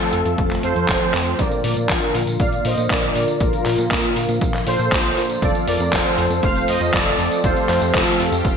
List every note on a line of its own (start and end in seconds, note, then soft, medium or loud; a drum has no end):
0.00 0.61 F3 medium
0.00 1.35 F3 medium
0.00 1.35 A3 medium
0.00 0.61 C4 medium
0.00 1.35 C4 medium
0.00 0.61 F4 medium
0.00 0.61 A4 medium
0.00 0.63 A4 loud
0.00 1.35 A4 medium
0.00 0.61 F5 medium
0.00 closed hi-hat soft
0.13 0.23 F2 medium
0.13 closed hi-hat loud
0.25 0.36 F2 loud
0.25 closed hi-hat medium
0.38 0.59 F1 medium
0.38 kick loud
0.38 closed hi-hat medium
0.51 clap soft
0.51 closed hi-hat soft
0.63 0.74 F2 loud
0.63 0.98 F3 medium
0.63 0.98 C4 medium
0.63 0.98 F4 medium
0.63 0.98 A4 medium
0.63 1.35 A4 medium
0.63 1.41 C5 loud
0.63 0.98 F5 loud
0.63 closed hi-hat medium
0.76 0.86 F2 medium
0.76 closed hi-hat medium
0.88 0.99 F1 loud
0.88 kick loud
0.88 clap loud
0.88 closed hi-hat medium
1.01 1.36 F3 medium
1.01 1.36 C4 medium
1.01 1.36 F4 medium
1.01 1.36 A4 medium
1.01 1.36 G5 loud
1.01 closed hi-hat soft
1.14 1.35 F2 medium
1.14 clap medium
1.14 closed hi-hat loud
1.26 closed hi-hat medium
1.39 1.49 A#1 loud
1.39 3.13 A#2 medium
1.39 5.38 D3 medium
1.39 8.57 F3 medium
1.39 5.38 A#3 medium
1.39 3.12 D4 medium
1.39 5.38 F4 medium
1.39 3.12 F4 medium
1.39 3.13 A#4 medium
1.39 1.63 A#4 medium
1.39 1.63 D5 loud
1.39 3.13 F5 medium
1.39 kick loud
1.39 closed hi-hat medium
1.39 tambourine soft
1.52 closed hi-hat soft
1.52 tambourine soft
1.64 1.75 A#2 loud
1.64 1.88 A#4 medium
1.64 1.90 D5 loud
1.64 open hi-hat loud
1.77 1.87 A#2 medium
1.77 tambourine medium
1.89 2.00 A#1 medium
1.89 2.37 F4 medium
1.89 2.41 A#4 loud
1.89 kick loud
1.89 clap loud
1.89 closed hi-hat medium
1.89 tambourine soft
2.02 closed hi-hat soft
2.02 tambourine soft
2.15 2.25 A#2 medium
2.15 open hi-hat medium
2.27 2.38 A#2 loud
2.27 closed hi-hat soft
2.27 tambourine medium
2.40 2.61 A#1 loud
2.40 2.64 D5 medium
2.40 2.66 F5 loud
2.40 kick loud
2.40 closed hi-hat medium
2.40 tambourine soft
2.52 closed hi-hat soft
2.52 tambourine soft
2.65 2.75 A#2 loud
2.65 2.89 C5 medium
2.65 2.91 D#5 loud
2.65 open hi-hat loud
2.77 2.88 A#2 loud
2.77 closed hi-hat soft
2.77 tambourine medium
2.90 3.11 A#1 medium
2.90 3.14 A#4 medium
2.90 3.14 D5 loud
2.90 kick loud
2.90 clap loud
2.90 closed hi-hat medium
2.90 tambourine soft
3.03 closed hi-hat soft
3.03 tambourine soft
3.15 3.38 A#2 medium
3.15 3.26 A#2 medium
3.15 3.38 D4 medium
3.15 3.38 F4 medium
3.15 3.38 A#4 medium
3.15 3.39 A#4 medium
3.15 3.41 D5 loud
3.15 3.38 D5 medium
3.15 open hi-hat medium
3.28 closed hi-hat soft
3.28 tambourine medium
3.40 3.51 A#1 loud
3.40 5.14 A#2 medium
3.40 5.14 A#3 medium
3.40 5.14 D4 medium
3.40 5.14 F4 medium
3.40 3.88 F4 medium
3.40 3.88 A#4 loud
3.40 5.14 F5 medium
3.40 kick loud
3.40 closed hi-hat medium
3.40 tambourine soft
3.53 closed hi-hat soft
3.53 tambourine soft
3.66 3.76 A#2 loud
3.66 clap soft
3.66 open hi-hat loud
3.78 3.89 A#2 medium
3.78 closed hi-hat soft
3.78 tambourine medium
3.91 4.02 A#1 medium
3.91 4.38 F4 medium
3.91 4.38 A#4 medium
3.91 kick loud
3.91 clap loud
3.91 closed hi-hat medium
3.91 tambourine soft
4.04 closed hi-hat soft
4.04 tambourine soft
4.16 4.27 A#2 medium
4.16 open hi-hat loud
4.29 4.39 A#2 loud
4.29 closed hi-hat soft
4.29 tambourine medium
4.41 4.62 A#1 medium
4.41 kick loud
4.41 closed hi-hat loud
4.41 tambourine soft
4.54 clap soft
4.54 closed hi-hat soft
4.54 tambourine soft
4.67 4.77 A#2 loud
4.67 5.39 A4 medium
4.67 5.45 C5 loud
4.67 open hi-hat medium
4.79 4.90 A#2 loud
4.79 closed hi-hat soft
4.79 tambourine medium
4.92 5.13 A#1 medium
4.92 kick loud
4.92 clap loud
4.92 closed hi-hat loud
4.92 tambourine soft
5.05 closed hi-hat soft
5.05 tambourine soft
5.17 5.38 A#2 loud
5.17 5.39 D4 medium
5.17 5.39 F4 medium
5.17 5.39 A#4 medium
5.17 5.39 D5 medium
5.17 open hi-hat medium
5.30 closed hi-hat soft
5.30 tambourine medium
5.42 5.53 F1 loud
5.42 7.16 F3 medium
5.42 8.57 A3 medium
5.42 7.16 C4 medium
5.42 8.57 C4 medium
5.42 7.16 F4 medium
5.42 7.42 A4 medium
5.42 7.16 A4 medium
5.42 5.54 A4 medium
5.42 5.54 D5 loud
5.42 7.16 F5 medium
5.42 kick loud
5.42 closed hi-hat medium
5.42 tambourine soft
5.55 closed hi-hat soft
5.55 tambourine soft
5.67 5.78 F2 loud
5.67 5.91 A#4 medium
5.67 5.94 D5 loud
5.67 open hi-hat loud
5.80 5.91 F2 medium
5.80 closed hi-hat soft
5.80 tambourine medium
5.93 6.03 F1 medium
5.93 6.40 A4 medium
5.93 6.43 C5 loud
5.93 kick loud
5.93 clap loud
5.93 closed hi-hat medium
5.93 tambourine soft
6.05 closed hi-hat soft
6.05 tambourine soft
6.18 6.28 F2 medium
6.18 open hi-hat medium
6.30 6.41 F2 loud
6.30 closed hi-hat soft
6.30 tambourine medium
6.43 6.64 F1 loud
6.43 6.67 C5 medium
6.43 6.69 F5 loud
6.43 kick loud
6.43 closed hi-hat medium
6.43 tambourine soft
6.56 closed hi-hat soft
6.56 tambourine soft
6.68 6.79 F2 loud
6.68 6.92 C5 medium
6.68 6.95 D#5 loud
6.68 open hi-hat loud
6.81 6.91 F2 loud
6.81 tambourine medium
6.93 7.15 F1 medium
6.93 7.41 A4 medium
6.93 7.46 D5 loud
6.93 kick loud
6.93 clap loud
6.93 closed hi-hat medium
6.93 tambourine soft
7.06 closed hi-hat soft
7.06 tambourine soft
7.19 7.29 F2 medium
7.19 7.41 F3 medium
7.19 7.41 C4 medium
7.19 7.41 F4 medium
7.19 7.41 A4 medium
7.19 7.41 D#5 medium
7.19 open hi-hat medium
7.31 closed hi-hat soft
7.31 tambourine medium
7.44 7.54 F1 loud
7.44 8.57 F3 medium
7.44 8.57 C4 medium
7.44 8.57 F4 medium
7.44 8.57 G4 medium
7.44 8.57 A4 medium
7.44 7.91 A4 medium
7.44 7.96 C5 loud
7.44 8.57 F5 loud
7.44 kick loud
7.44 closed hi-hat medium
7.44 tambourine soft
7.57 closed hi-hat soft
7.57 tambourine soft
7.69 7.80 F2 loud
7.69 clap soft
7.69 open hi-hat loud
7.82 7.92 F2 medium
7.82 closed hi-hat soft
7.82 tambourine medium
7.94 8.05 F1 medium
7.94 8.42 F4 medium
7.94 8.41 A4 medium
7.94 kick loud
7.94 clap loud
7.94 closed hi-hat medium
7.94 tambourine soft
8.07 closed hi-hat soft
8.07 tambourine soft
8.19 8.30 F2 medium
8.19 open hi-hat medium
8.32 8.43 F2 loud
8.32 closed hi-hat soft
8.32 tambourine medium
8.45 8.57 F1 loud
8.45 kick loud
8.45 closed hi-hat medium
8.45 tambourine medium